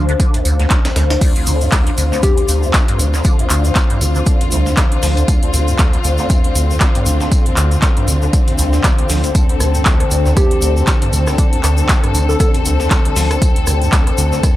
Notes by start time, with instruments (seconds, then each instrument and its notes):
Already playing: analog synth bass D2, ambient pad D4 C5 F5
0.09 acid bass D3, closed hi-hat
0.20 acid bass D3, kick, closed hi-hat, tambourine
0.34 acid bass D2, closed hi-hat
0.45 acid bass D2, analog synth bass D2, open hi-hat, tambourine
0.59 acid bass D2, snare, closed hi-hat
0.70 acid bass D2, kick, snare, clap, closed hi-hat, tambourine
0.85 acid bass C2, snare, closed hi-hat, tambourine
0.96 acid bass D2, analog synth bass D2, snare, open hi-hat, tambourine
1.10 acid bass D1, snare, closed hi-hat, tambourine
1.21 acid bass D2, string section D3 C4 F4, kick, closed hi-hat, crash, tambourine, shaker
1.36 acid bass D2, closed hi-hat
1.47 analog synth bass D2, acid bass D3, open hi-hat, tambourine, shaker
1.61 acid bass F2, closed hi-hat, shaker
1.72 acid bass D2, kick, snare, clap, closed hi-hat, tambourine, shaker
1.87 acid bass D2, closed hi-hat
1.98 analog synth bass D2, acid bass D3, open hi-hat, tambourine, shaker
2.12 acid bass D2, snare, shaker
2.23 acid bass E2, soft synth lead G4, kick, closed hi-hat, tambourine, shaker
2.37 acid bass D2, closed hi-hat
2.48 acid bass D2, analog synth bass D2, open hi-hat, tambourine, shaker
2.63 acid bass F2, shaker
2.74 acid bass C2, kick, snare, clap, closed hi-hat, tambourine, shaker
2.88 acid bass G2, closed hi-hat
2.99 analog synth bass D2, acid bass D3, open hi-hat, tambourine, shaker
3.14 acid bass D2, snare, shaker
3.24 acid bass D3, kick, closed hi-hat, tambourine, shaker
3.39 acid bass D2, closed hi-hat
3.50 analog synth bass D2, acid bass D2, clap, open hi-hat, tambourine, shaker
3.65 acid bass F2, closed hi-hat, shaker
3.75 acid bass C2, kick, snare, clap, closed hi-hat, tambourine, shaker
3.90 acid bass G2, closed hi-hat
4.01 analog synth bass D2, acid bass D3, open hi-hat, tambourine, shaker
4.15 acid bass D3, shaker
4.26 acid bass D3, kick, closed hi-hat, tambourine, shaker
4.41 acid bass D2, closed hi-hat
4.51 acid bass C2, analog synth bass D2, open hi-hat, tambourine, shaker
4.66 acid bass F2, snare, shaker
4.77 acid bass D2, kick, snare, clap, closed hi-hat, tambourine, shaker
4.83 ambient pad G5
4.92 acid bass C2, closed hi-hat
5.03 analog synth bass D2, acid bass F3, snare, open hi-hat, shaker
5.17 acid bass D2, closed hi-hat, shaker
5.28 acid bass D2, kick, closed hi-hat, tambourine, shaker
5.43 acid bass D2, closed hi-hat
5.54 analog synth bass D2, acid bass D3, open hi-hat, tambourine, shaker
5.68 acid bass F2, closed hi-hat, shaker
5.78 acid bass D2, kick, snare, clap, closed hi-hat, tambourine, shaker
5.93 acid bass D2, closed hi-hat
6.04 analog synth bass D2, acid bass D3, open hi-hat, tambourine, shaker
6.18 acid bass D2, snare, shaker
6.29 acid bass E2, kick, closed hi-hat, tambourine, shaker
6.44 acid bass D2, closed hi-hat
6.55 analog synth bass D2, acid bass D2, open hi-hat, tambourine, shaker
6.70 acid bass F2, shaker
6.80 acid bass C2, kick, snare, clap, closed hi-hat, tambourine, shaker
6.95 acid bass G2, closed hi-hat
7.06 analog synth bass D2, acid bass D3, open hi-hat, tambourine, shaker
7.21 acid bass D2, snare, shaker
7.32 acid bass D3, kick, closed hi-hat, tambourine, shaker
7.46 acid bass D2, closed hi-hat
7.57 acid bass D2, analog synth bass D2, clap, open hi-hat, tambourine, shaker
7.71 acid bass F2, closed hi-hat, shaker
7.82 acid bass C2, kick, snare, clap, closed hi-hat, tambourine, shaker
7.97 acid bass G2, closed hi-hat
8.08 analog synth bass D2, acid bass D3, open hi-hat, tambourine, shaker
8.22 acid bass D3, shaker
8.33 acid bass D3, kick, closed hi-hat, tambourine, shaker
8.48 acid bass D2, closed hi-hat
8.58 acid bass C2, analog synth bass D2, open hi-hat, tambourine, shaker
8.73 acid bass F2, snare, shaker
8.84 acid bass D2, kick, snare, clap, closed hi-hat, tambourine, shaker
8.98 acid bass C2, closed hi-hat
9.09 analog synth bass D2, acid bass F3, snare, open hi-hat, shaker
9.24 acid bass D2, closed hi-hat, shaker
9.35 acid bass D2, string section A4, kick, closed hi-hat, tambourine, shaker
9.49 acid bass D2, closed hi-hat
9.60 analog synth bass D2, acid bass D3, cross-stick, open hi-hat, tambourine, shaker
9.74 acid bass F2, closed hi-hat, shaker
9.85 acid bass D2, kick, snare, clap, closed hi-hat, tambourine, shaker
10.00 acid bass D2, cross-stick, closed hi-hat
10.11 analog synth bass D2, acid bass D3, open hi-hat, tambourine, shaker
10.26 acid bass D2, snare, shaker
10.37 acid bass E2, soft synth lead G4, kick, cross-stick, closed hi-hat, tambourine, shaker
10.51 acid bass D2, closed hi-hat
10.62 analog synth bass D2, acid bass D2, open hi-hat, tambourine, shaker
10.77 acid bass F2, shaker
10.87 acid bass C2, kick, cross-stick, snare, clap, closed hi-hat, tambourine, shaker
11.02 acid bass G2, closed hi-hat
11.13 analog synth bass D2, acid bass D3, open hi-hat, tambourine, shaker
11.27 acid bass D2, cross-stick, snare, shaker
11.38 acid bass D3, kick, closed hi-hat, tambourine, shaker
11.53 acid bass D2, closed hi-hat
11.63 analog synth bass D2, acid bass D2, cross-stick, clap, open hi-hat, tambourine, shaker
11.77 acid bass F2, closed hi-hat, shaker
11.89 acid bass C2, kick, snare, clap, closed hi-hat, tambourine, shaker
12.04 acid bass G2, cross-stick, closed hi-hat
12.15 analog synth bass D2, acid bass D3, open hi-hat, tambourine, shaker
12.29 acid bass D3, soft synth lead A4, shaker
12.40 acid bass D3, soft synth lead A4, kick, cross-stick, closed hi-hat, tambourine, shaker
12.54 acid bass D2, closed hi-hat
12.65 acid bass C2, analog synth bass D2, open hi-hat, tambourine, shaker
12.80 acid bass F2, snare, shaker
12.91 acid bass D2, kick, cross-stick, snare, clap, closed hi-hat, tambourine, shaker
13.05 acid bass C2, closed hi-hat
13.16 analog synth bass D2, acid bass F3, snare, open hi-hat, shaker
13.31 acid bass D2, cross-stick, closed hi-hat, shaker
13.42 acid bass D2, kick, closed hi-hat, tambourine, shaker
13.56 acid bass D2, closed hi-hat
13.67 analog synth bass D2, acid bass D3, cross-stick, open hi-hat, tambourine, shaker
13.82 acid bass F2, closed hi-hat, shaker
13.92 acid bass D2, kick, snare, clap, closed hi-hat, tambourine, shaker
14.07 acid bass D2, cross-stick, closed hi-hat
14.18 analog synth bass D2, acid bass D3, open hi-hat, tambourine, shaker
14.32 acid bass D2, snare, shaker
14.43 acid bass E2, kick, cross-stick, closed hi-hat, tambourine, shaker